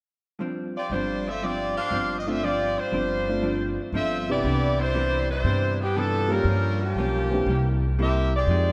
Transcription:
0.39 0.75 G2 soft
0.39 0.76 F3 soft
0.39 0.77 C4 medium
0.39 0.77 D4 soft
0.77 0.91 C4 medium
0.77 0.91 F4 medium
0.77 0.91 G4 medium
0.77 0.91 D5 medium
0.90 1.74 G1 medium
0.90 1.27 G2 medium
0.90 1.27 F3 medium
0.90 1.26 G3 medium
0.90 1.28 C4 medium
0.90 1.26 D4 medium
0.90 1.26 F4 medium
0.90 1.26 C5 medium
0.94 1.28 D4 medium
1.28 1.43 C4 medium
1.28 1.42 F4 medium
1.28 1.43 A4 medium
1.28 1.43 E5 medium
1.42 1.78 G2 soft
1.42 1.78 F3 soft
1.42 1.77 C4 medium
1.42 1.79 C4 medium
1.42 1.79 D4 medium
1.42 1.77 F4 medium
1.42 1.75 G4 medium
1.42 1.77 D5 loud
1.76 2.15 D4 medium
1.76 2.15 G4 medium
1.76 2.15 C5 medium
1.76 2.15 F5 loud
1.91 2.75 G1 medium
1.91 2.27 G2 medium
1.91 2.28 F3 medium
1.91 2.28 C4 medium
1.91 2.29 D4 medium
2.18 2.26 D#5 medium
2.26 2.41 A3 medium
2.26 2.41 C4 soft
2.26 2.42 C4 medium
2.26 2.41 D4 medium
2.26 2.41 F4 medium
2.26 2.42 F4 medium
2.26 2.43 A4 medium
2.26 2.43 E5 medium
2.42 2.78 G2 soft
2.42 2.79 F3 soft
2.42 2.77 C4 medium
2.42 2.79 C4 soft
2.42 2.80 D4 soft
2.42 2.77 F4 medium
2.42 2.78 G4 medium
2.42 2.77 D5 loud
2.78 3.79 G3 medium
2.78 3.79 D4 medium
2.78 3.79 F4 medium
2.78 3.79 C5 medium
2.92 3.77 G1 medium
2.92 3.29 G2 medium
2.92 3.29 F3 medium
2.92 3.30 C4 medium
2.92 3.30 D4 medium
3.28 3.91 A3 medium
3.28 3.91 C4 soft
3.28 3.92 D4 soft
3.28 3.92 F4 medium
3.42 3.79 G2 medium
3.42 3.79 F3 medium
3.42 3.80 C4 medium
3.42 3.80 D4 medium
3.92 4.40 G1 medium
3.92 4.30 G2 medium
3.92 4.30 F3 medium
3.92 4.31 C4 medium
3.92 4.27 C4 medium
3.92 4.31 D4 medium
3.92 4.27 F4 medium
3.92 4.27 A4 medium
3.92 4.27 E5 medium
4.28 4.92 C3 soft
4.28 4.92 G3 soft
4.28 4.92 B3 soft
4.28 4.80 B3 medium
4.28 4.92 D4 soft
4.28 4.93 E4 medium
4.28 4.79 E4 medium
4.28 4.80 G4 medium
4.28 4.80 D5 loud
4.44 5.41 C2 medium
4.44 4.80 C3 soft
4.44 4.81 E3 soft
4.44 4.81 B3 medium
4.44 4.81 D4 medium
4.80 5.29 G3 medium
4.80 5.29 D4 medium
4.80 5.30 E4 medium
4.80 5.29 C5 medium
4.95 5.31 C3 medium
4.95 5.31 E3 medium
4.95 5.32 B3 medium
4.95 5.32 D4 medium
5.30 5.77 G3 medium
5.30 5.77 D4 medium
5.30 5.78 E4 medium
5.30 5.77 C5 medium
5.44 6.42 G2 medium
5.44 5.82 C3 soft
5.44 5.82 E3 soft
5.48 5.83 B3 medium
5.48 5.83 D4 soft
5.82 5.97 E3 medium
5.82 5.97 B3 medium
5.82 5.96 D4 medium
5.82 5.97 G4 medium
5.96 6.32 C3 medium
5.96 6.32 E3 medium
5.96 6.31 F3 medium
5.96 6.33 B3 medium
5.96 6.31 B3 medium
5.96 6.31 D4 medium
5.96 6.33 D4 medium
5.96 6.31 A4 medium
6.29 6.44 G3 medium
6.29 6.81 G3 medium
6.29 6.44 A#3 medium
6.29 6.45 C#4 soft
6.29 6.82 C#4 medium
6.29 6.45 F4 soft
6.29 6.82 F4 medium
6.29 6.45 G4 medium
6.29 6.81 A#4 loud
6.45 6.92 G2 medium
6.45 6.83 G2 soft
6.45 6.83 F3 soft
6.50 6.84 A#3 medium
6.50 6.84 C#4 medium
6.82 7.44 F3 medium
6.82 7.78 A#3 medium
6.82 7.44 C#4 medium
6.82 7.79 G4 medium
6.95 7.43 B1 medium
6.95 7.33 G2 medium
6.95 7.33 F3 medium
6.99 7.34 A#3 medium
6.99 7.34 C#4 medium
7.31 7.45 E3 medium
7.31 7.46 A#3 medium
7.31 7.45 C4 medium
7.31 7.46 D4 medium
7.31 7.46 G4 medium
7.46 8.43 C2 medium
7.46 7.83 C3 medium
7.46 7.83 G3 medium
7.46 7.84 A#3 medium
7.46 7.85 E4 medium
7.99 8.34 C3 medium
7.99 8.34 G3 medium
7.99 8.34 A#3 medium
7.99 8.31 C4 medium
7.99 8.35 E4 medium
7.99 8.31 G4 medium
7.99 8.31 A#4 medium
7.99 8.31 E5 medium
8.36 8.72 C4 medium
8.36 8.72 G4 medium
8.36 8.72 G#4 medium
8.36 8.72 D5 loud
8.47 8.72 F2 medium
8.47 8.72 F3 soft
8.47 8.72 G#3 soft
8.47 8.72 D#4 medium
8.47 8.72 G4 medium

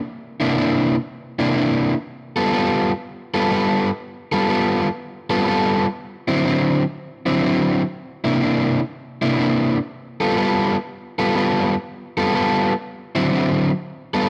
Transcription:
0.40 0.56 C3 medium
0.40 0.56 A#3 medium
0.40 0.57 D4 medium
0.40 0.57 E4 medium
0.57 0.94 C3 medium
0.57 0.94 A#3 medium
0.57 0.95 D4 medium
0.57 0.95 E4 medium
1.39 1.54 C3 medium
1.39 1.55 A#3 medium
1.39 1.55 D4 medium
1.39 1.55 E4 medium
1.55 1.92 C3 medium
1.55 1.93 A#3 medium
1.55 1.93 D4 medium
1.55 1.93 E4 medium
2.36 2.52 G3 medium
2.36 2.52 B3 medium
2.36 2.53 F4 medium
2.36 2.53 A4 loud
2.53 2.90 G3 medium
2.53 2.91 B3 medium
2.53 2.91 F4 medium
2.53 2.91 A4 medium
3.34 3.50 G3 medium
3.34 3.50 B3 medium
3.34 3.51 F4 medium
3.34 3.51 A4 medium
3.51 3.88 G3 medium
3.51 3.89 B3 medium
3.51 3.89 F4 medium
3.51 3.89 A4 medium
4.32 4.48 G3 medium
4.32 4.48 B3 medium
4.32 4.49 F4 medium
4.32 4.49 A4 medium
4.49 4.86 G3 medium
4.49 4.87 B3 medium
4.49 4.87 F4 medium
4.49 4.87 A4 medium
5.30 5.46 G3 medium
5.30 5.46 B3 medium
5.30 5.47 F4 medium
5.30 5.47 A4 medium
5.47 5.84 G3 medium
5.47 5.85 B3 medium
5.47 5.85 F4 medium
5.47 5.85 A4 medium
6.28 6.43 D3 medium
6.28 6.43 F#3 medium
6.28 6.44 C4 medium
6.28 6.44 E4 medium
6.44 6.82 D3 medium
6.44 6.82 F#3 medium
6.44 6.82 C4 medium
6.44 6.83 E4 medium
7.26 7.42 D3 medium
7.26 7.42 F#3 medium
7.26 7.43 C4 medium
7.26 7.43 E4 medium
7.43 7.81 D3 medium
7.43 7.81 F#3 medium
7.43 7.81 C4 medium
7.43 7.81 E4 medium
8.24 8.40 C3 medium
8.24 8.41 A#3 medium
8.24 8.41 D4 medium
8.24 8.41 E4 loud
8.41 8.79 C3 medium
8.41 8.79 A#3 medium
8.41 8.79 D4 medium
8.41 8.79 E4 medium
9.22 9.37 C3 medium
9.22 9.38 A#3 medium
9.22 9.38 D4 medium
9.22 9.38 E4 loud
9.38 9.76 C3 medium
9.38 9.77 A#3 medium
9.38 9.77 D4 medium
9.38 9.77 E4 medium
10.20 10.36 G3 medium
10.20 10.36 B3 medium
10.20 10.37 F4 medium
10.20 10.37 A4 medium
10.37 10.75 G3 medium
10.37 10.75 B3 medium
10.37 10.75 F4 medium
10.37 10.75 A4 medium
11.19 11.34 G3 medium
11.19 11.35 B3 medium
11.19 11.35 F4 medium
11.19 11.35 A4 medium
11.35 11.73 G3 medium
11.35 11.73 B3 medium
11.35 11.74 F4 medium
11.35 11.74 A4 medium
12.17 12.33 G3 medium
12.17 12.33 B3 medium
12.17 12.34 F4 medium
12.17 12.34 A4 medium
12.34 12.72 G3 medium
12.34 12.72 B3 medium
12.34 12.72 F4 medium
12.34 12.72 A4 medium
13.15 13.31 D3 medium
13.15 13.31 F#3 medium
13.15 13.31 C4 medium
13.15 13.32 E4 loud
13.32 13.70 D3 medium
13.32 13.70 F#3 medium
13.32 13.70 C4 medium
13.32 13.70 E4 medium
14.14 14.29 G3 medium
14.14 14.29 B3 medium
14.14 14.29 F4 medium
14.14 14.29 A4 loud

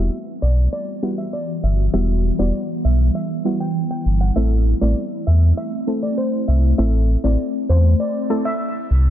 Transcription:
0.00 4.32 E3 medium
0.00 0.18 G3 medium
0.00 4.32 G3 medium
0.00 0.18 B3 medium
0.00 4.32 B3 medium
0.00 0.18 E4 medium
0.00 0.18 F#4 medium
0.00 1.91 F#4 medium
0.42 0.67 B1 medium
0.42 0.54 D5 medium
0.73 0.84 D5 medium
1.02 1.24 G3 medium
1.02 1.24 B3 medium
1.02 1.24 E4 medium
1.02 1.24 F#4 medium
1.18 1.30 E5 medium
1.33 1.45 D5 medium
1.63 1.88 G1 medium
1.63 1.75 E5 medium
1.93 2.31 E1 loud
1.93 2.35 G3 medium
1.93 2.35 B3 medium
1.93 2.35 E4 medium
1.93 9.10 E4 medium
1.93 2.36 F#4 loud
1.93 2.18 E5 loud
2.39 2.52 E1 medium
2.39 2.60 G3 medium
2.39 2.60 B3 medium
2.39 2.60 E4 medium
2.39 2.60 F#4 medium
2.39 2.51 D5 medium
2.84 3.10 B1 loud
2.84 2.97 E5 medium
3.15 3.27 E5 medium
3.45 3.66 G3 medium
3.45 3.66 B3 medium
3.45 3.66 E4 medium
3.45 3.66 F#4 medium
3.60 3.72 G5 medium
3.91 4.03 G5 medium
4.06 4.31 G1 medium
4.21 4.33 F#5 medium
4.36 4.74 A1 loud
4.36 4.78 A3 medium
4.36 9.10 A3 medium
4.36 4.78 C4 medium
4.36 9.10 C4 medium
4.36 4.78 E4 medium
4.36 4.78 A4 loud
4.36 4.48 E5 loud
4.81 4.94 A1 medium
4.81 5.02 A3 medium
4.81 5.02 C4 medium
4.81 5.03 E4 medium
4.81 5.03 A4 medium
4.81 4.93 D5 medium
5.27 5.52 E2 medium
5.27 5.39 E5 medium
5.57 5.69 E5 medium
5.87 6.08 A3 medium
5.87 6.09 C4 medium
5.87 6.09 E4 medium
5.87 6.09 A4 medium
6.03 6.15 D5 medium
6.18 6.30 C5 medium
6.48 6.73 C2 medium
6.48 6.60 E5 medium
6.78 7.16 A1 loud
6.78 7.20 A3 medium
6.78 7.20 C4 medium
6.78 7.20 E4 medium
6.78 7.20 A4 loud
6.78 7.02 E5 medium
7.24 7.36 A1 medium
7.24 7.45 A3 medium
7.24 7.45 C4 medium
7.24 7.45 E4 medium
7.24 7.45 A4 medium
7.24 7.36 D5 medium
7.69 7.94 E2 medium
7.69 7.81 C5 medium
8.00 8.12 D5 medium
8.30 8.51 A3 medium
8.30 8.51 C4 medium
8.30 8.51 E4 medium
8.30 8.51 A4 medium
8.45 8.57 E5 medium
8.90 9.10 C2 medium

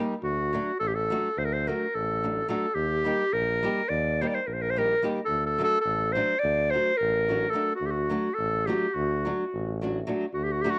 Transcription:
0.00 0.13 G3 medium
0.00 0.13 A#3 medium
0.00 0.14 D#4 medium
0.00 0.14 G4 medium
0.22 0.57 D2 medium
0.22 0.76 F#4 medium
0.53 0.70 F#3 medium
0.53 0.70 A3 medium
0.53 0.71 D4 medium
0.53 0.71 F#4 medium
0.80 1.15 A1 medium
0.80 0.89 A4 medium
0.88 0.97 G4 medium
0.95 1.40 A4 medium
1.10 1.27 F#3 medium
1.10 1.28 A3 medium
1.10 1.28 D4 medium
1.10 1.28 F#4 medium
1.37 1.72 D2 medium
1.37 1.46 C5 medium
1.45 1.54 A#4 medium
1.53 1.69 C5 medium
1.67 1.84 F#3 medium
1.67 1.85 A3 medium
1.67 1.85 D4 medium
1.67 1.85 F#4 medium
1.67 1.96 A#4 medium
1.95 2.43 A1 medium
1.95 2.49 A4 medium
2.23 2.40 F#3 soft
2.23 2.40 A3 soft
2.23 2.40 D4 soft
2.23 2.41 F#4 medium
2.48 2.65 F#3 medium
2.48 2.66 A3 medium
2.48 2.66 D4 medium
2.48 2.66 F#4 medium
2.48 2.76 A4 medium
2.74 3.10 D#2 medium
2.74 3.34 G4 medium
3.04 3.22 G3 medium
3.04 3.22 A#3 medium
3.04 3.23 D#4 medium
3.04 3.23 G4 medium
3.33 3.67 A#1 medium
3.33 3.90 A#4 loud
3.63 3.80 G3 medium
3.63 3.80 A#3 medium
3.63 3.80 D#4 medium
3.63 3.81 G4 medium
3.89 4.24 D#2 loud
3.89 4.23 D5 medium
4.21 4.38 G3 medium
4.21 4.39 A#3 medium
4.21 4.39 D#4 soft
4.21 4.39 G4 medium
4.21 4.29 C5 medium
4.28 4.36 D5 medium
4.35 4.48 C5 medium
4.47 4.95 A#1 medium
4.47 4.55 A#4 medium
4.53 4.63 C5 medium
4.62 4.71 A#4 medium
4.70 4.80 C5 medium
4.76 4.93 G3 medium
4.76 4.93 A#3 soft
4.76 4.93 D#4 soft
4.76 4.94 G4 soft
4.76 5.02 A#4 medium
5.02 5.19 G3 medium
5.02 5.19 A#3 medium
5.02 5.19 D#4 medium
5.02 5.19 G4 medium
5.25 5.62 D2 medium
5.25 5.46 A4 medium
5.46 5.63 A4 medium
5.58 5.75 F#3 medium
5.58 5.76 A3 medium
5.58 5.76 D4 medium
5.58 5.76 F#4 medium
5.64 5.80 A4 loud
5.81 6.19 A1 medium
5.81 6.14 A4 medium
6.12 6.33 F#3 medium
6.12 6.41 C5 medium
6.16 6.33 A3 medium
6.16 6.34 D4 medium
6.16 6.34 F#4 medium
6.39 6.78 D2 loud
6.39 6.72 D5 medium
6.71 6.90 F#3 soft
6.71 6.91 A3 medium
6.71 6.91 D4 soft
6.71 6.99 C5 medium
6.75 6.92 F#4 medium
6.97 7.49 A1 medium
6.97 7.52 A#4 medium
7.28 7.45 F#3 medium
7.28 7.45 A3 soft
7.28 7.46 D4 medium
7.28 7.46 F#4 medium
7.50 7.71 F#3 medium
7.50 7.75 A4 medium
7.54 7.71 A3 medium
7.54 7.71 D4 medium
7.54 7.72 F#4 medium
7.76 7.88 F#4 medium
7.81 8.16 D2 medium
7.86 7.93 G4 medium
7.91 8.36 F#4 medium
8.10 8.28 F#3 medium
8.10 8.28 A3 medium
8.10 8.28 D4 medium
8.10 8.29 F#4 medium
8.35 8.68 A4 medium
8.39 8.73 A1 medium
8.66 8.85 F#3 medium
8.66 8.86 A3 medium
8.66 8.86 D4 medium
8.66 8.86 F#4 medium
8.66 8.96 G4 medium
8.94 9.30 D2 medium
8.94 9.82 F#4 medium
9.25 9.43 F#3 medium
9.25 9.43 A3 soft
9.25 9.44 D4 medium
9.25 9.44 F#4 medium
9.54 10.02 A1 medium
9.81 9.98 F#3 medium
9.81 9.99 A3 soft
9.81 9.99 D4 medium
9.81 10.00 F#4 medium
10.07 10.24 F#3 medium
10.07 10.24 A3 medium
10.07 10.25 D4 medium
10.07 10.25 F#4 medium
10.33 10.68 D2 medium
10.33 10.45 F#4 medium
10.44 10.53 G4 medium
10.52 10.63 F#4 medium
10.61 10.79 F#3 medium
10.61 10.79 A3 medium
10.61 10.79 D4 medium
10.61 10.72 G4 medium
10.66 10.79 F#4 medium
10.70 10.79 F#4 loud

